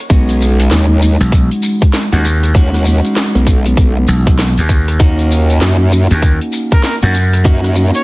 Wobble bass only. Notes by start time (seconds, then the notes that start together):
0.10 B1
0.71 D#2
2.55 D#2
3.35 B1
3.77 B1
5.00 D#2
5.62 F#2
7.45 F#2